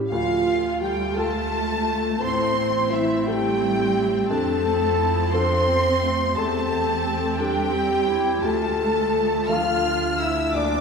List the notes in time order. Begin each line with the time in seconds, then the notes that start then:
Already playing: C#4 E4 G4
0.09 D2 F3 A3 F4 F5
0.81 G3 G4 G5
1.16 A3 F4 A4 A5
2.21 A1 A2 C4 E4 C5 C6
2.92 E3 E4 E5
3.25 G3 E4 G4 A4 G5
4.29 F2 F3 A3 D4 A4 A5
4.66 C4
4.98 E4
5.32 C4 D4 F4 A4 C5 C6
5.69 C4
6.03 A3
6.36 E2 A3 C4 G4 A4 A5
7.39 G3 D4 G4 A4 G5
7.74 C4
8.08 E4
8.42 D2 F3 A3 F4 A4 A5
9.49 F3 D4 F4 A4 F5 F6
10.18 E4 E5 E6
10.54 D2 A#3 D4 D5 D6